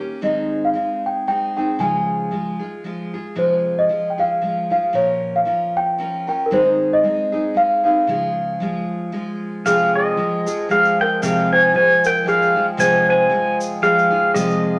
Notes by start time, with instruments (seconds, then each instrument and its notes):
Already playing: steel-string acoustic guitar G4
0.00 steel-string acoustic guitar A#3 C#4
0.21 steel-string acoustic guitar G#2 D#3 G#3 C4 D#4 G#4, celesta D#5
0.65 celesta F5
0.73 steel-string acoustic guitar G#3 C4 D#4 G#4
1.06 celesta G5
1.27 steel-string acoustic guitar G#3 C4 D#4 G#4, celesta G5
1.56 steel-string acoustic guitar G#3 C4 D#4 G#4, celesta G5
1.79 steel-string acoustic guitar C#3 F3 G#3 F4 G#4, celesta G#5
2.31 steel-string acoustic guitar F3 G#3 F4 G#4
2.59 steel-string acoustic guitar G#3 F4 G#4
2.84 steel-string acoustic guitar F3 G#3 F4 G#4
3.14 steel-string acoustic guitar G#3 F4 G#4
3.35 steel-string acoustic guitar F2 C3 F3 G#3 F4 G#4, celesta C5
3.79 celesta D#5
3.89 steel-string acoustic guitar F3 G#3 F4 G#4
4.10 celesta G5
4.18 steel-string acoustic guitar F3 G#3 F4 G#4, celesta F5
4.42 steel-string acoustic guitar F3 G#3 F4 G#4
4.70 steel-string acoustic guitar F3 G#3 F4 G#4, celesta F5
4.93 steel-string acoustic guitar A#2 F3 C#4 F4 A#4, celesta C#5
5.36 celesta F5
5.45 steel-string acoustic guitar F3 C#4 F4 A#4
5.77 celesta G5
5.98 steel-string acoustic guitar F3 C#4 F4 A#4
6.27 steel-string acoustic guitar C#4 F4 A#4, celesta G5
6.46 celesta A#4
6.51 steel-string acoustic guitar G#2 D#3 G#3 C4 D#4 G#4, celesta C5
6.93 celesta D#5
7.03 steel-string acoustic guitar G#3 C4 D#4 G#4
7.32 steel-string acoustic guitar G#3 C4 D#4 G#4
7.55 steel-string acoustic guitar G#3 C4 D#4 G#4, celesta F5
7.84 steel-string acoustic guitar G#3 C4 D#4 G#4, celesta F5
8.07 steel-string acoustic guitar C#3 F3 G#3 F4 G#4
8.60 steel-string acoustic guitar F3 G#3 F4 G#4
9.12 steel-string acoustic guitar F3 G#3 F4 G#4
9.65 steel-string acoustic guitar F2 C3 F3 G#3 F4 G#4, accordion F3 G#3 C4 G#4, celesta G#4, pedal steel guitar F5, shaker
9.95 celesta G#4, pedal steel guitar D#5
10.17 steel-string acoustic guitar F3 G#3 F4 G#4
10.47 steel-string acoustic guitar F3 G#3 F4 G#4, shaker
10.69 steel-string acoustic guitar F3 G#3 F4 G#4, celesta G#4, pedal steel guitar F5, shaker
10.85 shaker
11.01 celesta A#4, pedal steel guitar G5
11.22 steel-string acoustic guitar F2 C3 F3 G#3 F4 G#4, celesta G#4, pedal steel guitar F5, shaker
11.53 celesta C5, pedal steel guitar G#5
11.73 steel-string acoustic guitar F3 G#3 F4 G#4, celesta C5, pedal steel guitar G#5
12.04 celesta A#4, pedal steel guitar G5, shaker
12.24 steel-string acoustic guitar F3 G#3 F4 G#4, celesta G#4, shaker
12.29 pedal steel guitar F5
12.42 shaker
12.54 steel-string acoustic guitar F3 G#3 F4 G#4
12.77 steel-string acoustic guitar F2 C3 F3 G#3 F4 G#4, celesta C5, pedal steel guitar G#5, shaker
13.09 celesta C5, pedal steel guitar G#5
13.30 steel-string acoustic guitar F3 G#3 F4 G#4
13.61 shaker
13.82 steel-string acoustic guitar F3 G#3 F4 G#4, celesta G#4, pedal steel guitar F5, shaker
13.98 shaker
14.10 steel-string acoustic guitar F3 G#3 F4 G#4
14.34 steel-string acoustic guitar F2 C3 F3 G#3 F4 G#4, celesta G#4, pedal steel guitar D#5, shaker
14.50 shaker